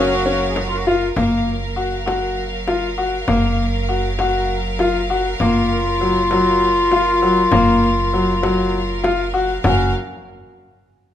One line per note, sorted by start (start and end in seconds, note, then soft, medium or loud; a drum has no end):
0.00 1.12 F#1 medium
0.00 1.14 F#3 medium
0.00 0.12 C#4 medium
0.00 0.47 F#4 medium
0.00 0.82 F#4 loud
0.00 1.14 A#4 medium
0.00 1.12 F5 medium
0.26 0.60 C#4 medium
0.50 0.59 G#4 medium
0.56 0.68 F#4 medium
0.56 frame drum soft
0.67 0.77 F4 medium
0.75 0.85 F#4 medium
0.87 1.04 F4 medium
0.87 frame drum soft
1.15 3.24 F#1 medium
1.15 9.59 F#3 medium
1.15 1.50 A#3 medium
1.15 9.60 A#4 medium
1.15 9.60 F5 medium
1.15 frame drum medium
1.76 1.93 F#4 medium
2.06 2.40 F#4 medium
2.06 frame drum medium
2.68 2.85 F4 medium
2.68 frame drum soft
2.98 3.15 F#4 medium
3.28 5.36 F#1 medium
3.28 3.62 A#3 medium
3.28 frame drum medium
3.89 4.06 F#4 medium
4.19 4.54 F#4 medium
4.19 frame drum soft
4.79 4.97 F4 medium
4.79 frame drum soft
5.10 5.27 F#4 medium
5.40 7.48 F#1 medium
5.40 5.75 A#3 medium
5.40 9.30 F4 loud
5.40 frame drum medium
6.01 6.18 F#3 medium
6.31 6.66 F#3 medium
6.31 frame drum soft
6.92 7.09 F4 medium
6.92 frame drum soft
7.22 7.39 F#3 medium
7.52 9.60 F#1 medium
7.52 7.86 A#3 medium
7.52 frame drum medium
8.13 8.30 F#3 medium
8.43 8.77 F#3 medium
8.43 frame drum medium
8.74 frame drum soft
9.04 9.20 F4 medium
9.04 frame drum medium
9.34 9.51 F#4 medium
9.63 9.93 F#1 medium
9.63 9.92 F#3 medium
9.63 9.92 C#4 medium
9.63 9.92 F#4 medium
9.63 9.92 A#4 medium
9.63 9.92 F5 medium
9.63 frame drum medium